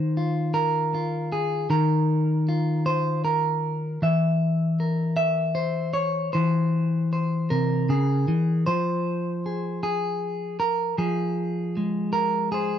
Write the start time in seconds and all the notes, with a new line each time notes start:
Already playing: D#3 D#4 C5
0.17 F4
0.54 A#4
0.94 F4
1.32 G#4
1.70 D#3 A#4
2.49 F4
2.86 C5
3.25 A#4
4.02 E3 E5
4.80 A#4
5.17 E5
5.55 C5
5.93 C#5
6.33 E3 C5
7.13 C5
7.50 C3 A#4
7.89 C#3 G#4
8.28 E3
8.66 F3 C5
9.46 G#4
9.83 G#4
10.60 A#4
10.98 F3 G#4
11.77 G#3
12.13 A#4
12.52 G#4 C5